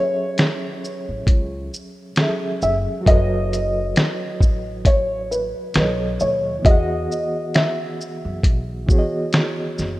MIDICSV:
0, 0, Header, 1, 5, 480
1, 0, Start_track
1, 0, Tempo, 895522
1, 1641, Time_signature, 4, 2, 24, 8
1, 5358, End_track
2, 0, Start_track
2, 0, Title_t, "Felt piano"
2, 0, Program_c, 0, 0
2, 0, Note_on_c, 0, 73, 102
2, 1408, Note_on_c, 0, 76, 97
2, 1448, Note_off_c, 0, 73, 0
2, 1461, Note_off_c, 0, 76, 0
2, 1648, Note_on_c, 0, 75, 94
2, 2607, Note_on_c, 0, 73, 86
2, 2633, Note_off_c, 0, 75, 0
2, 2848, Note_on_c, 0, 71, 80
2, 2851, Note_off_c, 0, 73, 0
2, 3080, Note_off_c, 0, 71, 0
2, 3088, Note_on_c, 0, 71, 77
2, 3308, Note_off_c, 0, 71, 0
2, 3328, Note_on_c, 0, 73, 82
2, 3568, Note_on_c, 0, 75, 90
2, 3572, Note_off_c, 0, 73, 0
2, 4048, Note_on_c, 0, 76, 81
2, 4059, Note_off_c, 0, 75, 0
2, 4503, Note_off_c, 0, 76, 0
2, 5358, End_track
3, 0, Start_track
3, 0, Title_t, "Reed electric piano"
3, 0, Program_c, 1, 4
3, 0, Control_c, 1, 64, 127
3, 0, Note_on_c, 1, 54, 62
3, 0, Note_on_c, 1, 61, 55
3, 0, Note_on_c, 1, 68, 59
3, 0, Note_on_c, 1, 69, 58
3, 0, Note_on_c, 1, 76, 72
3, 1127, Note_off_c, 1, 54, 0
3, 1134, Note_off_c, 1, 61, 0
3, 1142, Note_off_c, 1, 68, 0
3, 1150, Note_off_c, 1, 69, 0
3, 1158, Note_off_c, 1, 76, 0
3, 1158, Note_on_c, 1, 54, 58
3, 1166, Note_on_c, 1, 61, 52
3, 1173, Note_on_c, 1, 68, 49
3, 1181, Note_on_c, 1, 69, 49
3, 1189, Note_on_c, 1, 76, 64
3, 1604, Note_off_c, 1, 54, 0
3, 1611, Note_on_c, 1, 54, 63
3, 1623, Note_on_c, 1, 66, 55
3, 1629, Note_off_c, 1, 69, 0
3, 1635, Note_on_c, 1, 69, 62
3, 1644, Note_off_c, 1, 61, 0
3, 1647, Note_off_c, 1, 68, 0
3, 1647, Note_on_c, 1, 71, 58
3, 1649, Control_c, 1, 64, 0
3, 1655, Note_off_c, 1, 76, 0
3, 1659, Note_on_c, 1, 73, 52
3, 1672, Note_on_c, 1, 75, 64
3, 1744, Control_c, 1, 64, 127
3, 3044, Note_off_c, 1, 54, 0
3, 3050, Note_off_c, 1, 66, 0
3, 3057, Note_off_c, 1, 69, 0
3, 3063, Note_off_c, 1, 71, 0
3, 3069, Note_off_c, 1, 73, 0
3, 3075, Note_off_c, 1, 75, 0
3, 3077, Note_on_c, 1, 47, 64
3, 3085, Note_on_c, 1, 54, 55
3, 3089, Control_c, 1, 64, 0
3, 3094, Note_on_c, 1, 69, 53
3, 3102, Note_on_c, 1, 73, 55
3, 3108, Note_on_c, 1, 75, 65
3, 3190, Control_c, 1, 64, 127
3, 3534, Note_on_c, 1, 52, 61
3, 3549, Note_on_c, 1, 59, 57
3, 3559, Note_off_c, 1, 47, 0
3, 3563, Note_off_c, 1, 54, 0
3, 3565, Note_on_c, 1, 66, 57
3, 3567, Note_off_c, 1, 69, 0
3, 3568, Control_c, 1, 64, 0
3, 3572, Note_off_c, 1, 73, 0
3, 3574, Note_off_c, 1, 75, 0
3, 3580, Note_on_c, 1, 68, 53
3, 3596, Note_on_c, 1, 78, 72
3, 3664, Control_c, 1, 64, 127
3, 4726, Note_off_c, 1, 52, 0
3, 4734, Note_off_c, 1, 59, 0
3, 4742, Note_off_c, 1, 66, 0
3, 4749, Note_off_c, 1, 68, 0
3, 4750, Note_on_c, 1, 52, 56
3, 4757, Note_off_c, 1, 78, 0
3, 4759, Note_on_c, 1, 59, 53
3, 4765, Note_on_c, 1, 66, 51
3, 4774, Note_on_c, 1, 68, 52
3, 4782, Note_on_c, 1, 73, 47
3, 4811, Note_off_c, 1, 73, 0
3, 4816, Note_on_c, 1, 75, 66
3, 5358, Note_off_c, 1, 52, 0
3, 5358, Note_off_c, 1, 59, 0
3, 5358, Note_off_c, 1, 66, 0
3, 5358, Note_off_c, 1, 68, 0
3, 5358, Note_off_c, 1, 75, 0
3, 5358, End_track
4, 0, Start_track
4, 0, Title_t, "Upright bass"
4, 0, Program_c, 2, 32
4, 582, Note_on_c, 2, 33, 75
4, 674, Note_off_c, 2, 33, 0
4, 681, Note_on_c, 2, 37, 98
4, 900, Note_off_c, 2, 37, 0
4, 1407, Note_on_c, 2, 30, 96
4, 1527, Note_off_c, 2, 30, 0
4, 1645, Note_on_c, 2, 30, 106
4, 2102, Note_off_c, 2, 30, 0
4, 2363, Note_on_c, 2, 33, 82
4, 2956, Note_off_c, 2, 33, 0
4, 3085, Note_on_c, 2, 35, 103
4, 3302, Note_off_c, 2, 35, 0
4, 3327, Note_on_c, 2, 39, 86
4, 3543, Note_off_c, 2, 39, 0
4, 3565, Note_on_c, 2, 40, 94
4, 3782, Note_off_c, 2, 40, 0
4, 4422, Note_on_c, 2, 42, 81
4, 4513, Note_off_c, 2, 42, 0
4, 4524, Note_on_c, 2, 35, 86
4, 4741, Note_off_c, 2, 35, 0
4, 5246, Note_on_c, 2, 30, 82
4, 5358, Note_off_c, 2, 30, 0
4, 5358, End_track
5, 0, Start_track
5, 0, Title_t, "Drums"
5, 203, Note_on_c, 9, 42, 62
5, 210, Note_on_c, 9, 26, 89
5, 210, Note_on_c, 9, 38, 113
5, 257, Note_off_c, 9, 42, 0
5, 263, Note_off_c, 9, 38, 0
5, 264, Note_off_c, 9, 26, 0
5, 453, Note_on_c, 9, 82, 46
5, 506, Note_off_c, 9, 82, 0
5, 680, Note_on_c, 9, 36, 87
5, 684, Note_on_c, 9, 42, 67
5, 733, Note_off_c, 9, 36, 0
5, 737, Note_off_c, 9, 42, 0
5, 931, Note_on_c, 9, 82, 50
5, 984, Note_off_c, 9, 82, 0
5, 1158, Note_on_c, 9, 42, 66
5, 1165, Note_on_c, 9, 26, 82
5, 1165, Note_on_c, 9, 38, 99
5, 1212, Note_off_c, 9, 42, 0
5, 1218, Note_off_c, 9, 38, 0
5, 1219, Note_off_c, 9, 26, 0
5, 1403, Note_on_c, 9, 82, 42
5, 1456, Note_off_c, 9, 82, 0
5, 1642, Note_on_c, 9, 36, 112
5, 1647, Note_on_c, 9, 42, 68
5, 1696, Note_off_c, 9, 36, 0
5, 1700, Note_off_c, 9, 42, 0
5, 1893, Note_on_c, 9, 42, 48
5, 1893, Note_on_c, 9, 82, 51
5, 1947, Note_off_c, 9, 42, 0
5, 1947, Note_off_c, 9, 82, 0
5, 2123, Note_on_c, 9, 42, 64
5, 2129, Note_on_c, 9, 38, 107
5, 2130, Note_on_c, 9, 26, 85
5, 2176, Note_off_c, 9, 42, 0
5, 2183, Note_off_c, 9, 38, 0
5, 2184, Note_off_c, 9, 26, 0
5, 2361, Note_on_c, 9, 36, 82
5, 2371, Note_on_c, 9, 82, 51
5, 2415, Note_off_c, 9, 36, 0
5, 2425, Note_off_c, 9, 82, 0
5, 2599, Note_on_c, 9, 36, 92
5, 2602, Note_on_c, 9, 42, 70
5, 2653, Note_off_c, 9, 36, 0
5, 2656, Note_off_c, 9, 42, 0
5, 2851, Note_on_c, 9, 82, 50
5, 2904, Note_off_c, 9, 82, 0
5, 3078, Note_on_c, 9, 42, 69
5, 3085, Note_on_c, 9, 38, 106
5, 3086, Note_on_c, 9, 26, 86
5, 3132, Note_off_c, 9, 42, 0
5, 3138, Note_off_c, 9, 38, 0
5, 3139, Note_off_c, 9, 26, 0
5, 3322, Note_on_c, 9, 82, 42
5, 3376, Note_off_c, 9, 82, 0
5, 3563, Note_on_c, 9, 36, 115
5, 3568, Note_on_c, 9, 42, 66
5, 3617, Note_off_c, 9, 36, 0
5, 3621, Note_off_c, 9, 42, 0
5, 3815, Note_on_c, 9, 82, 48
5, 3869, Note_off_c, 9, 82, 0
5, 4044, Note_on_c, 9, 42, 57
5, 4050, Note_on_c, 9, 38, 103
5, 4051, Note_on_c, 9, 26, 88
5, 4097, Note_off_c, 9, 42, 0
5, 4104, Note_off_c, 9, 38, 0
5, 4105, Note_off_c, 9, 26, 0
5, 4293, Note_on_c, 9, 82, 48
5, 4346, Note_off_c, 9, 82, 0
5, 4521, Note_on_c, 9, 36, 83
5, 4525, Note_on_c, 9, 42, 73
5, 4575, Note_off_c, 9, 36, 0
5, 4579, Note_off_c, 9, 42, 0
5, 4763, Note_on_c, 9, 36, 88
5, 4770, Note_on_c, 9, 82, 53
5, 4816, Note_off_c, 9, 36, 0
5, 4823, Note_off_c, 9, 82, 0
5, 4999, Note_on_c, 9, 42, 64
5, 5005, Note_on_c, 9, 38, 103
5, 5006, Note_on_c, 9, 26, 82
5, 5052, Note_off_c, 9, 42, 0
5, 5059, Note_off_c, 9, 38, 0
5, 5060, Note_off_c, 9, 26, 0
5, 5244, Note_on_c, 9, 82, 40
5, 5249, Note_on_c, 9, 38, 36
5, 5297, Note_off_c, 9, 82, 0
5, 5303, Note_off_c, 9, 38, 0
5, 5358, End_track
0, 0, End_of_file